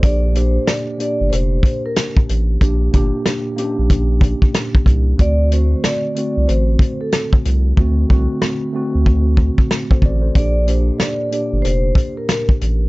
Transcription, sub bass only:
X:1
M:4/4
L:1/16
Q:"Swing 16ths" 1/4=93
K:Bb
V:1 name="Sub bass" clef=bass
B,,,4 z3 G,,, F,,,2 z4 A,,,2 | B,,,2 G,,, z4 B,,,4 z3 C,,2 | D,,4 z3 C,, A,,,2 z4 C,,2 | D,,2 C,, z4 D,,4 z3 A,,,2 |
B,,,4 z3 G,,, F,,,2 z4 A,,,2 |]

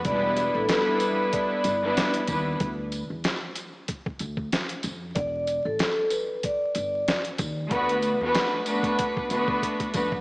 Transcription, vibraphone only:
X:1
M:4/4
L:1/16
Q:"Swing 16ths" 1/4=94
K:Em
V:1 name="Vibraphone"
d3 A3 B2 d2 d3 z3 | z16 | d3 A3 B2 d2 d3 z3 | z16 |]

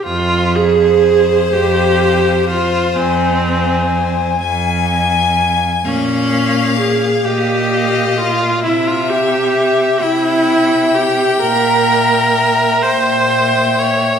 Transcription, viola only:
X:1
M:6/8
L:1/16
Q:3/8=42
K:Fm
V:1 name="Viola"
F2 A4 G4 F2 | C6 z6 | D4 A2 G4 F2 | =E F G4 E4 G2 |
B6 c4 d2 |]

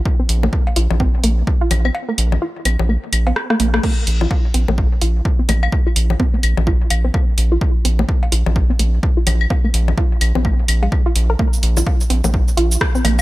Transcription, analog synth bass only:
X:1
M:4/4
L:1/16
Q:"Swing 16ths" 1/4=127
K:Cphr
V:1 name="Analog synth bass" clef=bass
z2 B,,,2 z2 B,,, B,,,2 z B,,,2 z2 B,,,2 | z2 B,,,2 z2 B,,, B,,,2 z B,,,2 z2 B,,,2 | z2 B,,,2 z2 B,,, B,,,2 z B,,,2 z2 B,,,2 | z2 B,,,2 z2 B,,, B,,,2 z B,,,2 z2 B,,,2 |
z2 B,,,2 z2 B,,, B,,,2 z B,,,2 z2 B,,,2 | z2 B,,,2 z2 B,,, B,,,2 z B,,,2 z2 B,,,2 | z2 B,,,2 z2 B,,, B,,,2 z B,,,2 z2 B,,,2 |]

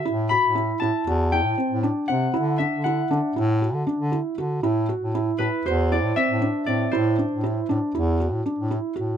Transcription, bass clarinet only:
X:1
M:9/8
L:1/16
Q:3/8=79
K:Ador
V:1 name="Bass clarinet" clef=bass
A,,3 A,,3 A,, z E,,3 A,, z A,,2 z C,2 | D,3 D,3 D, z A,,3 D, z D,2 z D,2 | A,,3 A,,3 A,, z E,,3 A,, z A,,2 z A,,2 | A,,3 A,,3 A,, z E,,3 A,, z A,,2 z A,,2 |]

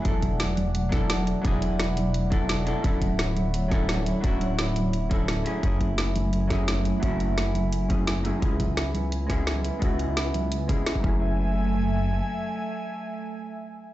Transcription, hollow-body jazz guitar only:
X:1
M:4/4
L:1/8
Q:1/4=172
K:F#m
V:1 name="Hollow-body jazz guitar"
[F,B,DEA]4- [F,B,DEA] [F,B,DEA]3 | [F,B,DEG]4- [F,B,DEG] [F,B,DEA]2 [F,B,DEA] | [F,CDEA]4- [F,CDEA] [F,CDEA]3 | [F,CDEF]4- [F,CDEF] [F,CDEA]2 [F,A,CEG] |
[F,A,CEG]4- [F,A,CEG] [F,A,CEG]3 | [F,A,CEF]4- [F,A,CEF] [F,A,CEG]2 [F,A,CEG] | [G,B,CEG]4- [G,B,CEG] [G,B,CEG]3 | [G,B,CEF]4- [G,B,CEF] [G,B,CEG]2 [F,A,CEG]- |
[F,A,CEG]8- | [F,A,CEG]8 |]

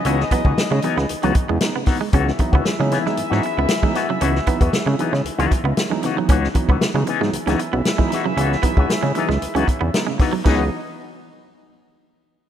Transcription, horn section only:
X:1
M:4/4
L:1/8
Q:1/4=115
K:C#m
V:1 name="Horn section"
[DGBd]6- [DGBd] z | [EGBe]8- | [EGBe]6- [EGBe] z | z4 [EGBe]4- |
[EGBe]6- [EGBe] z | [B,DGd] z6 z |]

